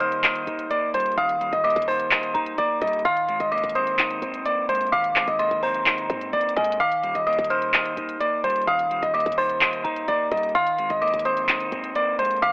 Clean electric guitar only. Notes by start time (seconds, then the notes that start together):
Already playing: D#3 G3 A#3
0.00 D#4
0.24 D#5
0.47 D#4
0.71 A#3
0.94 G3
1.18 D#3
1.41 G3
1.65 A#3
1.88 D#4
2.12 D#5
2.35 D#4
2.58 A#3
2.82 G3
3.05 D#3
3.29 G#3
3.52 A#3
3.75 C4
3.99 D#4
4.22 C4
4.46 A#3
4.69 G#3
4.92 D#3
5.16 G#3
5.39 A#3
5.63 C4
5.86 D#4
6.09 C4
6.33 A#3
6.56 G#3
6.80 D#3
7.03 G3
7.27 A#3
7.50 D#4
7.74 D#5
7.97 D#4
8.21 A#3
8.44 G3
8.68 D#3
8.90 G3
9.14 A#3
9.38 D#4
9.61 D#5
9.85 D#4
10.08 A#3
10.32 G3
10.55 D#3
10.79 G#3
11.02 A#3
11.25 C4
11.49 D#4
11.72 C4
11.96 A#3
12.19 G#3
12.42 D#3